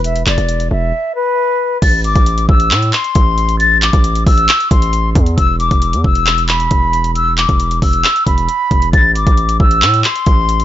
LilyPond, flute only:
\new Staff \with { instrumentName = "Flute" } { \time 4/4 \key a \minor \tempo 4 = 135 e''8 d''4 e''4 b'4. | a'''8 d'''4 e'''4 c'''4. | a'''8 d'''4 e'''4 c'''4. | e'''8 d'''4 e'''4 b''4. |
e'''8 d'''4 e'''4 b''4. | a'''8 d'''4 e'''4 c'''4. | }